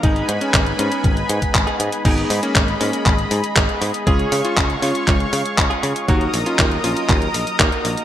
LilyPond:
<<
  \new Staff \with { instrumentName = "Analog synth pad" } { \time 4/4 \key aes \dorian \tempo 4 = 119 << { <ces'' aes'' ces'''>1 | <ees'' ces'''>1 | <des'' f'' des'''>1 | <ees'' bes'' ees'''>1 | } \\ { ees'1 | aes'1~ | aes'1 | bes'1 | } >> }
  \new Staff \with { instrumentName = "Clean electric guitar" } { \time 4/4 \key aes \dorian <aes ces' ees' aes'>2.~ <aes ces' ees' aes'>16 <aes ces' ees' aes'>8. | <aes ees' aes'>2. <aes ces' ees' aes'>4 | <aes des' f' aes'>2.~ <aes des' f' aes'>16 <aes des' f' aes'>8. | <ges bes ees' bes'>2. <bes ees' ges' bes'>4 | }
  \new Staff \with { instrumentName = "Electric grand piano" } { \time 4/4 \key aes \dorian ees'8 r16 des'8 r16 des'8 r2 | <ces' ees'>8 r16 <bes des'>8 r16 <bes des'>8 r2 | <f' aes'>8 r16 <des' f'>8 r16 <des' f'>8 r2 | <ees' ges'>8 r16 <des' f'>8 r16 <des' f'>8 r2 | }
  \new Staff \with { instrumentName = "Picked electric bass" } { \clef bass \time 4/4 \key aes \dorian aes,,8 aes,8 aes,,8 aes,8 aes,,8 aes,8 aes,,8 aes,8 | aes,,8 aes,8 aes,,8 aes,8 aes,,8 aes,8 aes,,8 aes,8 | des,8 des8 des,8 des8 des,8 des8 des,8 des8 | ees,8 bes,,8 ees,8 bes,,8 ees,8 bes,,8 ees,8 bes,,8 | }
  \new DrumStaff \with { instrumentName = "Drums" } \drummode { \time 4/4 <hh bd>16 hh16 hh16 hh16 <hc hh bd>16 hh16 hh16 hh16 <hh bd>16 hh16 hh16 <hh bd>16 <hc hh bd>16 hh16 hh16 hh16 | <cymc hh bd>16 hh16 hho16 hh16 <hc hh bd>16 hh16 hho16 hh16 <hc hh bd>16 hh16 hho16 hh16 <hc hh bd>16 hh16 hho16 hh16 | <hh bd>16 hh16 hho16 hh16 <hc hh bd>16 hh16 hho16 hh16 <hc hh bd>16 hh16 hho16 hh16 <hc hh bd>16 hh16 hho16 hh16 | <hh bd>16 hh16 hho16 hh16 <hc hh bd>16 hh16 hho16 hh16 <hc hh bd>16 hh16 hho16 hh16 <hc hh bd>16 hh16 hho16 hh16 | }
>>